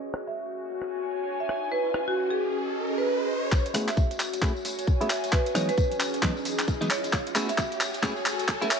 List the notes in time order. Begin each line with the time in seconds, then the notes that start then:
Already playing: C#4 F#4 G#4, riser
0.14 cross-stick
0.27 E5
0.37 G#5
0.47 C#5
0.82 cross-stick
1.40 E5
1.49 E5, cross-stick
1.72 C#4 B4
1.94 cross-stick
2.06 F#4 G#4
2.31 G#4
2.36 D#5
2.98 B4
3.07 B4
3.52 F#4, kick, clap, tambourine, riser
3.66 closed hi-hat, tambourine
3.74 A3 B3 C#4 E4 G#4, cross-stick, open hi-hat, tambourine
3.86 C#5 E5, clap, closed hi-hat, tambourine
3.97 kick, tambourine
4.11 closed hi-hat, tambourine
4.20 clap, open hi-hat, tambourine
4.33 G#5, closed hi-hat, tambourine
4.42 A3 B3 C#4 E4 G#4, kick, cross-stick, clap, tambourine
4.56 tambourine
4.65 open hi-hat, tambourine
4.79 closed hi-hat, tambourine
4.87 kick, tambourine
5.01 A3 B3 C#4 E4 G#4 E5, closed hi-hat, tambourine
5.10 E5, cross-stick, clap, open hi-hat, tambourine
5.24 closed hi-hat, tambourine
5.33 C#4 B4, kick, clap, tambourine
5.46 closed hi-hat, tambourine
5.55 E3 F#3 G#3 B3 D#4 C#5, cross-stick, open hi-hat, tambourine
5.59 G#4
5.69 B4, closed hi-hat, tambourine
5.77 kick, tambourine
5.92 closed hi-hat, tambourine
6.00 clap, open hi-hat, tambourine
6.14 D#5, closed hi-hat, tambourine
6.22 E3 F#3 G#3 B3 D#4, kick, clap, tambourine
6.37 tambourine
6.45 open hi-hat, tambourine
6.59 clap, closed hi-hat, tambourine
6.68 kick, tambourine
6.81 E3 F#3 G#3 B3 D#4, closed hi-hat, tambourine
6.90 C#5, clap, open hi-hat, tambourine
7.04 closed hi-hat, tambourine
7.13 F#4, kick, clap, tambourine
7.21 C#5
7.27 closed hi-hat, tambourine
7.31 E4 G#5
7.35 A3 B3 C#4 G#4, clap, open hi-hat, tambourine
7.49 E5, closed hi-hat, tambourine
7.58 kick, clap, tambourine
7.72 closed hi-hat, tambourine
7.81 clap, open hi-hat, tambourine
7.94 closed hi-hat, tambourine
8.02 A3 B3 C#4 E4 G#4, kick, clap, tambourine
8.16 tambourine
8.26 clap, open hi-hat, tambourine
8.39 closed hi-hat, tambourine
8.48 kick, clap, tambourine
8.62 A3 B3 C#4 E4 G#4 E5, closed hi-hat, tambourine
8.71 E5, clap, open hi-hat, tambourine